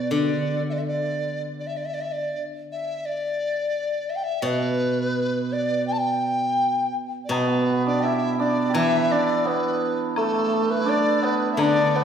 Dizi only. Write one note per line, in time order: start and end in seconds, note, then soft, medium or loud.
0.00 0.12 D5 medium
0.12 0.63 D5 medium
0.69 0.79 D5 medium
0.69 0.73 E5 medium
0.78 0.80 E5 medium
0.88 1.41 D5 medium
1.59 1.68 D5 medium
1.67 1.78 E5 medium
1.76 1.86 D5 medium
1.85 1.95 E5 medium
1.94 2.02 D5 medium
2.01 2.13 E5 medium
2.12 2.42 D5 medium
2.71 3.07 E5 medium
3.05 4.11 D5 medium
4.09 4.17 E5 medium
4.16 4.25 G5 medium
4.23 4.47 E5 medium
4.45 5.54 B4 medium
5.52 5.87 D5 medium
5.87 5.93 G5 medium
5.92 6.00 A5 medium
5.98 6.94 G5 medium
7.24 7.32 D5 soft
7.30 7.85 B4 medium
7.86 8.04 D5 medium
8.03 8.39 E5 medium
8.39 8.76 D5 medium
8.74 9.13 E5 medium
9.11 9.48 D5 medium
9.47 9.99 B4 medium
10.17 10.72 A4 medium
10.71 10.90 B4 medium
10.89 11.26 D5 medium
11.24 11.51 B4 medium
11.52 11.61 E5 medium
11.60 11.97 D5 medium
11.95 12.04 B4 medium